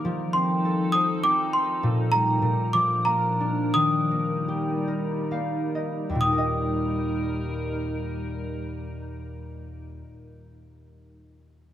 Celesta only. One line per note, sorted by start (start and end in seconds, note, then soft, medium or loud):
0.33 0.89 C6 medium
0.92 1.06 D#6 medium
1.24 1.37 D6 medium
1.53 1.81 C6 medium
2.12 2.69 A#5 medium
2.73 3.06 D6 medium
3.05 3.75 A#5 medium
3.74 5.70 D#6 medium
6.21 9.58 D#6 medium